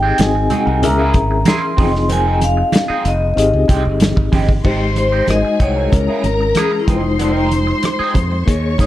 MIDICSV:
0, 0, Header, 1, 9, 480
1, 0, Start_track
1, 0, Tempo, 636943
1, 1583, Time_signature, 4, 2, 24, 8
1, 6680, End_track
2, 0, Start_track
2, 0, Title_t, "String section"
2, 0, Program_c, 0, 48
2, 3504, Note_on_c, 0, 84, 81
2, 3506, Note_on_c, 0, 72, 72
2, 3973, Note_off_c, 0, 84, 0
2, 3974, Note_off_c, 0, 72, 0
2, 3983, Note_on_c, 0, 80, 77
2, 3985, Note_on_c, 0, 68, 73
2, 4454, Note_off_c, 0, 68, 0
2, 4454, Note_off_c, 0, 80, 0
2, 4463, Note_on_c, 0, 70, 74
2, 4467, Note_on_c, 0, 82, 84
2, 5169, Note_off_c, 0, 70, 0
2, 5171, Note_off_c, 0, 82, 0
2, 5187, Note_on_c, 0, 72, 78
2, 5188, Note_on_c, 0, 84, 86
2, 6363, Note_off_c, 0, 72, 0
2, 6364, Note_off_c, 0, 84, 0
2, 6381, Note_on_c, 0, 73, 83
2, 6381, Note_on_c, 0, 85, 88
2, 6680, Note_off_c, 0, 73, 0
2, 6680, Note_off_c, 0, 85, 0
2, 6680, End_track
3, 0, Start_track
3, 0, Title_t, "Vibraphone"
3, 0, Program_c, 1, 11
3, 0, Note_on_c, 1, 79, 105
3, 165, Note_on_c, 1, 80, 100
3, 166, Note_off_c, 1, 79, 0
3, 648, Note_off_c, 1, 80, 0
3, 648, Note_on_c, 1, 82, 101
3, 1121, Note_on_c, 1, 84, 97
3, 1129, Note_off_c, 1, 82, 0
3, 1561, Note_off_c, 1, 84, 0
3, 1601, Note_on_c, 1, 80, 102
3, 1838, Note_off_c, 1, 80, 0
3, 1839, Note_on_c, 1, 77, 92
3, 2316, Note_on_c, 1, 75, 81
3, 2324, Note_off_c, 1, 77, 0
3, 2759, Note_off_c, 1, 75, 0
3, 3753, Note_on_c, 1, 72, 92
3, 3994, Note_off_c, 1, 72, 0
3, 3994, Note_on_c, 1, 75, 95
3, 4233, Note_on_c, 1, 73, 89
3, 4235, Note_off_c, 1, 75, 0
3, 4722, Note_off_c, 1, 73, 0
3, 4722, Note_on_c, 1, 70, 82
3, 4955, Note_on_c, 1, 68, 81
3, 4959, Note_off_c, 1, 70, 0
3, 5098, Note_off_c, 1, 68, 0
3, 5121, Note_on_c, 1, 64, 73
3, 5262, Note_off_c, 1, 64, 0
3, 5281, Note_on_c, 1, 63, 73
3, 5435, Note_off_c, 1, 63, 0
3, 5444, Note_on_c, 1, 63, 68
3, 5884, Note_off_c, 1, 63, 0
3, 6640, Note_on_c, 1, 73, 87
3, 6680, Note_off_c, 1, 73, 0
3, 6680, End_track
4, 0, Start_track
4, 0, Title_t, "Reed electric piano"
4, 0, Program_c, 2, 4
4, 0, Control_c, 2, 64, 127
4, 0, Note_on_c, 2, 60, 67
4, 0, Note_on_c, 2, 63, 65
4, 0, Note_on_c, 2, 67, 62
4, 0, Note_on_c, 2, 68, 59
4, 0, Note_on_c, 2, 75, 75
4, 137, Note_off_c, 2, 60, 0
4, 139, Note_off_c, 2, 63, 0
4, 146, Note_on_c, 2, 60, 66
4, 147, Note_off_c, 2, 67, 0
4, 147, Note_off_c, 2, 68, 0
4, 148, Note_on_c, 2, 63, 63
4, 149, Note_off_c, 2, 75, 0
4, 153, Control_c, 2, 64, 0
4, 154, Note_on_c, 2, 66, 58
4, 155, Note_on_c, 2, 68, 63
4, 157, Note_on_c, 2, 75, 78
4, 305, Control_c, 2, 64, 127
4, 621, Note_off_c, 2, 68, 0
4, 625, Note_off_c, 2, 60, 0
4, 625, Note_on_c, 2, 61, 64
4, 626, Note_off_c, 2, 63, 0
4, 627, Note_on_c, 2, 64, 59
4, 628, Note_off_c, 2, 66, 0
4, 630, Note_off_c, 2, 75, 0
4, 630, Note_on_c, 2, 68, 62
4, 632, Control_c, 2, 64, 0
4, 634, Note_on_c, 2, 70, 57
4, 639, Note_on_c, 2, 76, 69
4, 763, Control_c, 2, 64, 127
4, 1333, Note_on_c, 2, 60, 70
4, 1337, Note_on_c, 2, 63, 64
4, 1343, Note_off_c, 2, 68, 0
4, 1344, Note_off_c, 2, 61, 0
4, 1344, Note_off_c, 2, 64, 0
4, 1345, Note_on_c, 2, 65, 62
4, 1348, Note_off_c, 2, 70, 0
4, 1350, Note_off_c, 2, 76, 0
4, 1352, Note_on_c, 2, 68, 61
4, 1354, Control_c, 2, 64, 0
4, 1356, Note_on_c, 2, 75, 75
4, 1504, Control_c, 2, 64, 127
4, 2513, Note_off_c, 2, 60, 0
4, 2515, Note_off_c, 2, 63, 0
4, 2519, Note_off_c, 2, 65, 0
4, 2522, Note_off_c, 2, 68, 0
4, 2525, Note_off_c, 2, 75, 0
4, 2530, Note_on_c, 2, 60, 64
4, 2537, Note_on_c, 2, 63, 63
4, 2543, Note_on_c, 2, 67, 61
4, 2551, Control_c, 2, 64, 0
4, 2551, Note_on_c, 2, 68, 59
4, 2556, Note_on_c, 2, 75, 75
4, 2660, Control_c, 2, 64, 127
4, 3476, Note_off_c, 2, 60, 0
4, 3480, Note_off_c, 2, 63, 0
4, 3483, Note_off_c, 2, 67, 0
4, 3487, Note_off_c, 2, 68, 0
4, 3490, Note_off_c, 2, 75, 0
4, 3500, Note_on_c, 2, 56, 67
4, 3506, Note_on_c, 2, 63, 62
4, 3508, Note_on_c, 2, 67, 66
4, 3512, Note_on_c, 2, 72, 74
4, 3513, Control_c, 2, 64, 0
4, 3657, Control_c, 2, 64, 127
4, 3970, Note_off_c, 2, 56, 0
4, 3975, Note_off_c, 2, 63, 0
4, 3979, Note_on_c, 2, 56, 61
4, 3984, Note_on_c, 2, 63, 55
4, 3985, Note_off_c, 2, 67, 0
4, 3987, Note_off_c, 2, 72, 0
4, 3988, Note_on_c, 2, 66, 50
4, 3993, Control_c, 2, 64, 0
4, 3993, Note_on_c, 2, 70, 51
4, 4036, Note_off_c, 2, 70, 0
4, 4041, Note_on_c, 2, 75, 63
4, 4133, Control_c, 2, 64, 127
4, 4450, Note_off_c, 2, 56, 0
4, 4459, Note_on_c, 2, 56, 59
4, 4463, Note_off_c, 2, 63, 0
4, 4463, Note_on_c, 2, 61, 54
4, 4465, Note_off_c, 2, 66, 0
4, 4467, Note_on_c, 2, 64, 55
4, 4470, Control_c, 2, 64, 0
4, 4470, Note_on_c, 2, 70, 66
4, 4492, Note_off_c, 2, 75, 0
4, 4618, Control_c, 2, 64, 127
4, 5163, Note_off_c, 2, 56, 0
4, 5172, Note_on_c, 2, 56, 62
4, 5181, Note_on_c, 2, 63, 54
4, 5184, Note_off_c, 2, 61, 0
4, 5186, Note_off_c, 2, 64, 0
4, 5187, Note_off_c, 2, 70, 0
4, 5188, Note_on_c, 2, 65, 57
4, 5192, Control_c, 2, 64, 0
4, 5198, Note_on_c, 2, 71, 55
4, 5240, Note_off_c, 2, 71, 0
4, 5247, Note_on_c, 2, 72, 67
4, 5341, Control_c, 2, 64, 127
4, 6356, Note_off_c, 2, 56, 0
4, 6360, Note_off_c, 2, 63, 0
4, 6364, Note_off_c, 2, 65, 0
4, 6373, Note_on_c, 2, 58, 69
4, 6382, Note_on_c, 2, 63, 65
4, 6391, Note_on_c, 2, 68, 63
4, 6394, Note_off_c, 2, 72, 0
4, 6394, Control_c, 2, 64, 0
4, 6398, Note_on_c, 2, 73, 73
4, 6522, Control_c, 2, 64, 127
4, 6680, Note_off_c, 2, 58, 0
4, 6680, Note_off_c, 2, 63, 0
4, 6680, Note_off_c, 2, 68, 0
4, 6680, Note_off_c, 2, 73, 0
4, 6680, End_track
5, 0, Start_track
5, 0, Title_t, "Clean electric guitar"
5, 0, Program_c, 3, 27
5, 19, Note_on_c, 3, 67, 62
5, 25, Note_on_c, 3, 60, 54
5, 34, Note_on_c, 3, 56, 47
5, 130, Note_off_c, 3, 67, 0
5, 133, Note_off_c, 3, 60, 0
5, 137, Note_off_c, 3, 56, 0
5, 377, Note_on_c, 3, 60, 55
5, 388, Note_on_c, 3, 66, 59
5, 393, Note_on_c, 3, 68, 63
5, 489, Note_off_c, 3, 60, 0
5, 493, Note_off_c, 3, 68, 0
5, 494, Note_off_c, 3, 66, 0
5, 496, Note_on_c, 3, 70, 56
5, 503, Note_on_c, 3, 66, 53
5, 511, Note_on_c, 3, 60, 49
5, 608, Note_off_c, 3, 70, 0
5, 611, Note_off_c, 3, 66, 0
5, 616, Note_off_c, 3, 60, 0
5, 739, Note_on_c, 3, 68, 72
5, 746, Note_on_c, 3, 64, 74
5, 755, Note_on_c, 3, 58, 62
5, 852, Note_off_c, 3, 58, 0
5, 858, Note_off_c, 3, 64, 0
5, 863, Note_off_c, 3, 68, 0
5, 1100, Note_on_c, 3, 58, 81
5, 1108, Note_on_c, 3, 64, 81
5, 1113, Note_on_c, 3, 68, 89
5, 1206, Note_off_c, 3, 68, 0
5, 1218, Note_off_c, 3, 64, 0
5, 1239, Note_off_c, 3, 58, 0
5, 1332, Note_on_c, 3, 60, 65
5, 1342, Note_on_c, 3, 63, 66
5, 1349, Note_on_c, 3, 68, 71
5, 1445, Note_off_c, 3, 60, 0
5, 1448, Note_off_c, 3, 68, 0
5, 1450, Note_off_c, 3, 63, 0
5, 1575, Note_on_c, 3, 60, 79
5, 1584, Note_on_c, 3, 63, 85
5, 1590, Note_on_c, 3, 70, 86
5, 1799, Note_off_c, 3, 60, 0
5, 1804, Note_off_c, 3, 63, 0
5, 1807, Note_off_c, 3, 70, 0
5, 2172, Note_on_c, 3, 68, 74
5, 2182, Note_on_c, 3, 63, 65
5, 2187, Note_on_c, 3, 60, 62
5, 2287, Note_off_c, 3, 60, 0
5, 2291, Note_off_c, 3, 63, 0
5, 2295, Note_off_c, 3, 68, 0
5, 2773, Note_on_c, 3, 56, 59
5, 2782, Note_on_c, 3, 60, 66
5, 2790, Note_on_c, 3, 67, 62
5, 2885, Note_off_c, 3, 56, 0
5, 2887, Note_off_c, 3, 67, 0
5, 2890, Note_off_c, 3, 60, 0
5, 3255, Note_on_c, 3, 56, 77
5, 3265, Note_on_c, 3, 60, 82
5, 3272, Note_on_c, 3, 67, 91
5, 3371, Note_off_c, 3, 67, 0
5, 3381, Note_off_c, 3, 60, 0
5, 3397, Note_off_c, 3, 56, 0
5, 3500, Note_on_c, 3, 60, 64
5, 3505, Note_on_c, 3, 63, 74
5, 3514, Note_on_c, 3, 67, 75
5, 3613, Note_off_c, 3, 67, 0
5, 3624, Note_off_c, 3, 63, 0
5, 3639, Note_off_c, 3, 60, 0
5, 3861, Note_on_c, 3, 67, 53
5, 3866, Note_on_c, 3, 63, 47
5, 3874, Note_on_c, 3, 60, 38
5, 3969, Note_off_c, 3, 67, 0
5, 3972, Note_off_c, 3, 63, 0
5, 3976, Note_off_c, 3, 60, 0
5, 4218, Note_on_c, 3, 60, 52
5, 4225, Note_on_c, 3, 66, 55
5, 4234, Note_on_c, 3, 68, 63
5, 4328, Note_off_c, 3, 60, 0
5, 4332, Note_off_c, 3, 66, 0
5, 4336, Note_off_c, 3, 68, 0
5, 4340, Note_on_c, 3, 70, 53
5, 4350, Note_on_c, 3, 66, 46
5, 4355, Note_on_c, 3, 60, 41
5, 4449, Note_off_c, 3, 70, 0
5, 4454, Note_off_c, 3, 66, 0
5, 4457, Note_off_c, 3, 60, 0
5, 4582, Note_on_c, 3, 68, 64
5, 4592, Note_on_c, 3, 64, 62
5, 4598, Note_on_c, 3, 58, 60
5, 4699, Note_off_c, 3, 58, 0
5, 4703, Note_off_c, 3, 64, 0
5, 4708, Note_off_c, 3, 68, 0
5, 4946, Note_on_c, 3, 58, 64
5, 4953, Note_on_c, 3, 64, 76
5, 4959, Note_on_c, 3, 68, 78
5, 5058, Note_off_c, 3, 68, 0
5, 5068, Note_off_c, 3, 64, 0
5, 5083, Note_off_c, 3, 58, 0
5, 5180, Note_on_c, 3, 60, 53
5, 5189, Note_on_c, 3, 63, 55
5, 5196, Note_on_c, 3, 68, 57
5, 5289, Note_off_c, 3, 68, 0
5, 5290, Note_off_c, 3, 60, 0
5, 5294, Note_off_c, 3, 63, 0
5, 5418, Note_on_c, 3, 59, 75
5, 5428, Note_on_c, 3, 62, 67
5, 5435, Note_on_c, 3, 69, 79
5, 5508, Note_off_c, 3, 59, 0
5, 5508, Note_on_c, 3, 60, 75
5, 5518, Note_off_c, 3, 62, 0
5, 5518, Note_on_c, 3, 63, 67
5, 5525, Note_off_c, 3, 69, 0
5, 5525, Note_on_c, 3, 70, 79
5, 5642, Note_off_c, 3, 60, 0
5, 5647, Note_off_c, 3, 63, 0
5, 5650, Note_off_c, 3, 70, 0
5, 6022, Note_on_c, 3, 68, 79
5, 6034, Note_on_c, 3, 63, 63
5, 6041, Note_on_c, 3, 60, 60
5, 6135, Note_off_c, 3, 60, 0
5, 6141, Note_off_c, 3, 63, 0
5, 6145, Note_off_c, 3, 68, 0
5, 6620, Note_on_c, 3, 58, 56
5, 6628, Note_on_c, 3, 61, 53
5, 6635, Note_on_c, 3, 68, 63
5, 6680, Note_off_c, 3, 58, 0
5, 6680, Note_off_c, 3, 61, 0
5, 6680, Note_off_c, 3, 68, 0
5, 6680, End_track
6, 0, Start_track
6, 0, Title_t, "Fingered electric bass"
6, 0, Program_c, 4, 33
6, 0, Note_on_c, 4, 32, 97
6, 86, Note_off_c, 4, 32, 0
6, 144, Note_on_c, 4, 32, 104
6, 355, Note_off_c, 4, 32, 0
6, 504, Note_on_c, 4, 36, 86
6, 626, Note_off_c, 4, 36, 0
6, 626, Note_on_c, 4, 37, 98
6, 835, Note_off_c, 4, 37, 0
6, 863, Note_on_c, 4, 32, 92
6, 1073, Note_off_c, 4, 32, 0
6, 1343, Note_on_c, 4, 29, 102
6, 1974, Note_off_c, 4, 29, 0
6, 2301, Note_on_c, 4, 29, 104
6, 2512, Note_off_c, 4, 29, 0
6, 2539, Note_on_c, 4, 32, 112
6, 2645, Note_off_c, 4, 32, 0
6, 2663, Note_on_c, 4, 37, 94
6, 2768, Note_off_c, 4, 37, 0
6, 2780, Note_on_c, 4, 36, 90
6, 2901, Note_on_c, 4, 31, 83
6, 2913, Note_off_c, 4, 36, 0
6, 3112, Note_off_c, 4, 31, 0
6, 3145, Note_on_c, 4, 32, 87
6, 3249, Note_off_c, 4, 32, 0
6, 3262, Note_on_c, 4, 31, 91
6, 3472, Note_off_c, 4, 31, 0
6, 3501, Note_on_c, 4, 32, 95
6, 3923, Note_off_c, 4, 32, 0
6, 3977, Note_on_c, 4, 32, 99
6, 4085, Note_off_c, 4, 32, 0
6, 4220, Note_on_c, 4, 36, 87
6, 4432, Note_off_c, 4, 36, 0
6, 4465, Note_on_c, 4, 37, 97
6, 4569, Note_off_c, 4, 37, 0
6, 4700, Note_on_c, 4, 32, 83
6, 4912, Note_off_c, 4, 32, 0
6, 5184, Note_on_c, 4, 29, 84
6, 5816, Note_off_c, 4, 29, 0
6, 6143, Note_on_c, 4, 41, 86
6, 6355, Note_off_c, 4, 41, 0
6, 6386, Note_on_c, 4, 39, 100
6, 6597, Note_off_c, 4, 39, 0
6, 6626, Note_on_c, 4, 44, 91
6, 6680, Note_off_c, 4, 44, 0
6, 6680, End_track
7, 0, Start_track
7, 0, Title_t, "Muted clean electric guitar strokes"
7, 141, Note_on_c, 9, 29, 39
7, 217, Note_off_c, 9, 29, 0
7, 265, Note_on_c, 9, 29, 45
7, 340, Note_off_c, 9, 29, 0
7, 621, Note_on_c, 9, 29, 42
7, 696, Note_off_c, 9, 29, 0
7, 986, Note_on_c, 9, 29, 39
7, 1061, Note_off_c, 9, 29, 0
7, 1215, Note_on_c, 9, 29, 35
7, 1291, Note_off_c, 9, 29, 0
7, 1457, Note_on_c, 9, 29, 39
7, 1533, Note_off_c, 9, 29, 0
7, 1939, Note_on_c, 9, 29, 44
7, 2014, Note_off_c, 9, 29, 0
7, 2055, Note_on_c, 9, 29, 39
7, 2130, Note_off_c, 9, 29, 0
7, 2418, Note_on_c, 9, 29, 36
7, 2493, Note_off_c, 9, 29, 0
7, 2539, Note_on_c, 9, 29, 41
7, 2614, Note_off_c, 9, 29, 0
7, 2896, Note_on_c, 9, 29, 39
7, 2971, Note_off_c, 9, 29, 0
7, 3138, Note_on_c, 9, 29, 38
7, 3214, Note_off_c, 9, 29, 0
7, 3380, Note_on_c, 9, 29, 39
7, 3455, Note_off_c, 9, 29, 0
7, 3622, Note_on_c, 9, 29, 44
7, 3698, Note_off_c, 9, 29, 0
7, 3742, Note_on_c, 9, 29, 33
7, 3818, Note_off_c, 9, 29, 0
7, 3984, Note_on_c, 9, 29, 29
7, 4059, Note_off_c, 9, 29, 0
7, 4104, Note_on_c, 9, 29, 41
7, 4180, Note_off_c, 9, 29, 0
7, 4708, Note_on_c, 9, 29, 33
7, 4783, Note_off_c, 9, 29, 0
7, 4826, Note_on_c, 9, 29, 38
7, 4902, Note_off_c, 9, 29, 0
7, 5067, Note_on_c, 9, 29, 43
7, 5142, Note_off_c, 9, 29, 0
7, 5298, Note_on_c, 9, 29, 39
7, 5374, Note_off_c, 9, 29, 0
7, 5780, Note_on_c, 9, 29, 44
7, 5856, Note_off_c, 9, 29, 0
7, 5901, Note_on_c, 9, 29, 31
7, 5977, Note_off_c, 9, 29, 0
7, 6144, Note_on_c, 9, 29, 32
7, 6220, Note_off_c, 9, 29, 0
7, 6267, Note_on_c, 9, 29, 33
7, 6342, Note_off_c, 9, 29, 0
7, 6386, Note_on_c, 9, 29, 39
7, 6461, Note_off_c, 9, 29, 0
7, 6680, End_track
8, 0, Start_track
8, 0, Title_t, "Muted fingered electric bass strokes"
8, 2183, Note_on_c, 9, 29, 45
8, 2258, Note_off_c, 9, 29, 0
8, 4096, Note_on_c, 9, 29, 42
8, 4171, Note_off_c, 9, 29, 0
8, 4584, Note_on_c, 9, 29, 42
8, 4659, Note_off_c, 9, 29, 0
8, 6025, Note_on_c, 9, 29, 41
8, 6100, Note_off_c, 9, 29, 0
8, 6680, End_track
9, 0, Start_track
9, 0, Title_t, "Drums"
9, 136, Note_on_c, 9, 42, 93
9, 146, Note_on_c, 9, 63, 73
9, 156, Note_on_c, 9, 38, 106
9, 212, Note_off_c, 9, 42, 0
9, 221, Note_off_c, 9, 63, 0
9, 232, Note_off_c, 9, 38, 0
9, 377, Note_on_c, 9, 42, 74
9, 382, Note_on_c, 9, 64, 67
9, 453, Note_off_c, 9, 42, 0
9, 458, Note_off_c, 9, 64, 0
9, 622, Note_on_c, 9, 64, 70
9, 625, Note_on_c, 9, 42, 99
9, 697, Note_off_c, 9, 64, 0
9, 701, Note_off_c, 9, 42, 0
9, 858, Note_on_c, 9, 42, 72
9, 861, Note_on_c, 9, 62, 55
9, 862, Note_on_c, 9, 36, 91
9, 934, Note_off_c, 9, 42, 0
9, 936, Note_off_c, 9, 62, 0
9, 937, Note_off_c, 9, 36, 0
9, 1096, Note_on_c, 9, 42, 101
9, 1096, Note_on_c, 9, 63, 84
9, 1114, Note_on_c, 9, 38, 113
9, 1171, Note_off_c, 9, 42, 0
9, 1171, Note_off_c, 9, 63, 0
9, 1189, Note_off_c, 9, 38, 0
9, 1341, Note_on_c, 9, 46, 51
9, 1342, Note_on_c, 9, 63, 81
9, 1343, Note_on_c, 9, 36, 104
9, 1417, Note_off_c, 9, 46, 0
9, 1417, Note_off_c, 9, 63, 0
9, 1419, Note_off_c, 9, 36, 0
9, 1471, Note_on_c, 9, 38, 37
9, 1547, Note_off_c, 9, 38, 0
9, 1575, Note_on_c, 9, 62, 49
9, 1580, Note_on_c, 9, 42, 98
9, 1650, Note_off_c, 9, 62, 0
9, 1655, Note_off_c, 9, 42, 0
9, 1818, Note_on_c, 9, 62, 54
9, 1820, Note_on_c, 9, 42, 81
9, 1893, Note_off_c, 9, 62, 0
9, 1895, Note_off_c, 9, 42, 0
9, 2053, Note_on_c, 9, 63, 75
9, 2057, Note_on_c, 9, 42, 87
9, 2077, Note_on_c, 9, 38, 104
9, 2128, Note_off_c, 9, 63, 0
9, 2133, Note_off_c, 9, 42, 0
9, 2152, Note_off_c, 9, 38, 0
9, 2299, Note_on_c, 9, 42, 78
9, 2374, Note_off_c, 9, 42, 0
9, 2549, Note_on_c, 9, 42, 102
9, 2624, Note_off_c, 9, 42, 0
9, 2779, Note_on_c, 9, 62, 53
9, 2781, Note_on_c, 9, 36, 93
9, 2782, Note_on_c, 9, 42, 68
9, 2855, Note_off_c, 9, 62, 0
9, 2857, Note_off_c, 9, 36, 0
9, 2858, Note_off_c, 9, 42, 0
9, 3014, Note_on_c, 9, 42, 102
9, 3024, Note_on_c, 9, 63, 82
9, 3032, Note_on_c, 9, 38, 115
9, 3089, Note_off_c, 9, 42, 0
9, 3100, Note_off_c, 9, 63, 0
9, 3108, Note_off_c, 9, 38, 0
9, 3143, Note_on_c, 9, 36, 102
9, 3218, Note_off_c, 9, 36, 0
9, 3259, Note_on_c, 9, 46, 52
9, 3261, Note_on_c, 9, 36, 85
9, 3261, Note_on_c, 9, 63, 88
9, 3335, Note_off_c, 9, 46, 0
9, 3336, Note_off_c, 9, 36, 0
9, 3336, Note_off_c, 9, 63, 0
9, 3380, Note_on_c, 9, 36, 91
9, 3456, Note_off_c, 9, 36, 0
9, 3495, Note_on_c, 9, 62, 43
9, 3501, Note_on_c, 9, 49, 80
9, 3502, Note_on_c, 9, 36, 104
9, 3571, Note_off_c, 9, 62, 0
9, 3577, Note_off_c, 9, 36, 0
9, 3577, Note_off_c, 9, 49, 0
9, 3736, Note_on_c, 9, 62, 46
9, 3739, Note_on_c, 9, 42, 71
9, 3812, Note_off_c, 9, 62, 0
9, 3815, Note_off_c, 9, 42, 0
9, 3974, Note_on_c, 9, 63, 65
9, 3978, Note_on_c, 9, 42, 79
9, 3998, Note_on_c, 9, 37, 91
9, 4050, Note_off_c, 9, 63, 0
9, 4053, Note_off_c, 9, 42, 0
9, 4073, Note_off_c, 9, 37, 0
9, 4219, Note_on_c, 9, 42, 65
9, 4220, Note_on_c, 9, 36, 81
9, 4294, Note_off_c, 9, 42, 0
9, 4296, Note_off_c, 9, 36, 0
9, 4461, Note_on_c, 9, 62, 29
9, 4461, Note_on_c, 9, 64, 59
9, 4466, Note_on_c, 9, 36, 90
9, 4469, Note_on_c, 9, 42, 86
9, 4536, Note_off_c, 9, 62, 0
9, 4536, Note_off_c, 9, 64, 0
9, 4541, Note_off_c, 9, 36, 0
9, 4545, Note_off_c, 9, 42, 0
9, 4702, Note_on_c, 9, 42, 62
9, 4703, Note_on_c, 9, 62, 46
9, 4778, Note_off_c, 9, 42, 0
9, 4778, Note_off_c, 9, 62, 0
9, 4935, Note_on_c, 9, 42, 95
9, 4940, Note_on_c, 9, 63, 74
9, 4953, Note_on_c, 9, 37, 101
9, 5010, Note_off_c, 9, 42, 0
9, 5015, Note_off_c, 9, 63, 0
9, 5029, Note_off_c, 9, 37, 0
9, 5183, Note_on_c, 9, 36, 96
9, 5183, Note_on_c, 9, 63, 78
9, 5184, Note_on_c, 9, 42, 68
9, 5258, Note_off_c, 9, 36, 0
9, 5259, Note_off_c, 9, 42, 0
9, 5259, Note_off_c, 9, 63, 0
9, 5422, Note_on_c, 9, 42, 98
9, 5425, Note_on_c, 9, 62, 47
9, 5497, Note_off_c, 9, 42, 0
9, 5501, Note_off_c, 9, 62, 0
9, 5663, Note_on_c, 9, 42, 67
9, 5664, Note_on_c, 9, 62, 48
9, 5739, Note_off_c, 9, 42, 0
9, 5739, Note_off_c, 9, 62, 0
9, 5898, Note_on_c, 9, 42, 76
9, 5905, Note_on_c, 9, 63, 64
9, 5918, Note_on_c, 9, 37, 95
9, 5973, Note_off_c, 9, 42, 0
9, 5980, Note_off_c, 9, 63, 0
9, 5993, Note_off_c, 9, 37, 0
9, 6137, Note_on_c, 9, 64, 63
9, 6142, Note_on_c, 9, 36, 80
9, 6142, Note_on_c, 9, 42, 70
9, 6212, Note_off_c, 9, 64, 0
9, 6217, Note_off_c, 9, 42, 0
9, 6218, Note_off_c, 9, 36, 0
9, 6388, Note_on_c, 9, 36, 92
9, 6390, Note_on_c, 9, 42, 92
9, 6463, Note_off_c, 9, 36, 0
9, 6466, Note_off_c, 9, 42, 0
9, 6617, Note_on_c, 9, 62, 50
9, 6625, Note_on_c, 9, 36, 82
9, 6627, Note_on_c, 9, 42, 63
9, 6680, Note_off_c, 9, 36, 0
9, 6680, Note_off_c, 9, 42, 0
9, 6680, Note_off_c, 9, 62, 0
9, 6680, End_track
0, 0, End_of_file